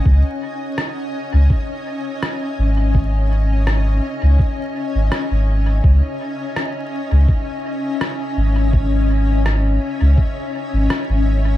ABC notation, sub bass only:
X:1
M:4/4
L:1/16
Q:"Swing 16ths" 1/4=83
K:C#m
V:1 name="Sub bass" clef=bass
C,, z6 C,, z6 G,,,2- | G,,,6 z C,, z3 G,,, z G,,,3 | C,, z6 C,, z6 G,,,2- | G,,,6 z C,, z3 G,,, z G,,,3 |]